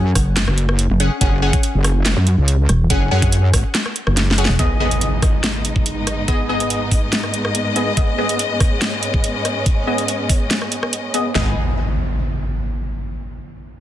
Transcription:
Already playing: F#2 C#4 G#4 F#5
0.15 F#1, kick, cross-stick, open hi-hat
0.37 snare, clap, closed hi-hat
0.48 F#1, cross-stick
0.58 closed hi-hat
0.69 cross-stick
0.79 closed hi-hat
0.90 F#1
1.00 C#4 G#4 F#5, closed hi-hat
1.21 F#1 C#4 G#4 F#5, kick, closed hi-hat
1.42 C#4 G#4 F#5
1.53 kick, closed hi-hat
1.63 closed hi-hat
1.74 F#1
1.84 cross-stick, open hi-hat
2.06 snare, clap, closed hi-hat
2.17 F#2
2.27 closed hi-hat
2.38 C#2
2.48 closed hi-hat
2.69 E1, cross-stick, closed hi-hat
2.90 F#1 C#4 G#4 F#5, kick, closed hi-hat
3.11 F#2 C#4 G#4 F#5
3.22 kick, closed hi-hat
3.32 closed hi-hat
3.53 G#1, kick, cross-stick, open hi-hat
3.75 snare, clap, closed hi-hat
3.86 cross-stick
3.96 closed hi-hat
4.07 F#1, cross-stick
4.17 snare, closed hi-hat
4.31 snare
4.38 C#4 G#4 F#5, closed hi-hat
4.45 snare
4.49 E1
4.59 G#2 G#3 B3 D#4 G#4 D#5, kick, closed hi-hat, impact
4.80 B3 G#4 D#5
4.91 closed hi-hat
5.01 closed hi-hat
5.22 kick, cross-stick, open hi-hat
5.44 snare, closed hi-hat
5.65 closed hi-hat
5.76 kick
5.86 closed hi-hat
6.07 cross-stick, closed hi-hat
6.28 B3 G#4 D#5, kick, closed hi-hat
6.49 B3 G#4 D#5
6.60 closed hi-hat
6.70 closed hi-hat
6.91 kick, open hi-hat
7.13 snare, closed hi-hat
7.24 cross-stick
7.34 closed hi-hat
7.45 cross-stick
7.55 closed hi-hat
7.76 B3 G#4 D#5, closed hi-hat
7.97 B3 C#4 G#4 D#5, kick, closed hi-hat
8.18 B3 G#4 D#5
8.29 closed hi-hat
8.39 closed hi-hat
8.60 kick, cross-stick, open hi-hat
8.82 snare, closed hi-hat
9.03 closed hi-hat
9.14 kick
9.24 closed hi-hat
9.45 cross-stick, closed hi-hat
9.66 kick, closed hi-hat
9.87 B3 G#4 D#5
9.98 closed hi-hat
10.08 closed hi-hat
10.29 kick, open hi-hat
10.51 snare, closed hi-hat
10.62 cross-stick
10.72 closed hi-hat
10.83 cross-stick
10.93 closed hi-hat
11.14 B3 G#4 D#5, closed hi-hat
11.35 G#1 B3 D#4 G#4 D#5, snare, impact

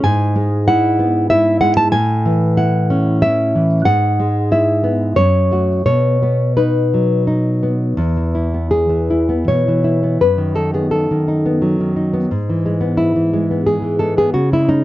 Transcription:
0.04 G#2 G#5
0.36 G#3
0.68 E4 F#5
0.99 B3
1.30 E4 E5
1.61 G#3 F#5
1.77 A5
1.92 A2 G#5
2.26 E3
2.57 E4 F#5
2.90 C#4
3.22 E4 E5
3.55 E3
3.85 G#2 F#5
4.20 G#3
4.52 E4 E5
4.84 B3
5.16 F#2 C#5
5.51 A3 F#4
5.86 B2 C#5
6.22 B3
6.57 D#4 B4
6.94 F#3
7.27 D#4
7.63 B3
7.97 E2
8.17 E3
8.35 E4
8.54 B3
8.71 G#4
8.89 E3
9.10 E4
9.29 B3
9.48 B2 C#5
9.68 E3
9.84 E4
10.03 B3
10.21 F#2 B4
10.38 D#3
10.55 D#4 A4
10.74 B3 G#4
10.91 A4
11.11 D#3
11.28 D#4
11.46 B3
11.62 F#3
11.80 D#3
11.96 D#4
12.14 B3
12.31 G#2
12.50 E3
12.66 G#3
12.81 B3
12.97 E4
13.16 E3
13.33 G#3
13.51 B3
13.66 G#3 G#4
13.82 E3
13.99 G#3 A4
14.17 B3 G#4
14.34 C#3 F#4
14.52 G#3 E4
14.69 C#4 D#4

